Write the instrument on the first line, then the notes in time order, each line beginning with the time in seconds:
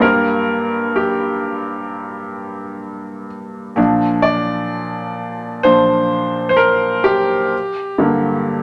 upright piano
0.00 G2 G3 A#3 A#4
0.96 G4
3.76 A#2 F3 D4
4.22 D5
5.63 A#2 F3 D4 C5
6.49 C5
6.57 A#4
7.04 G4
7.98 G2 D3 A#3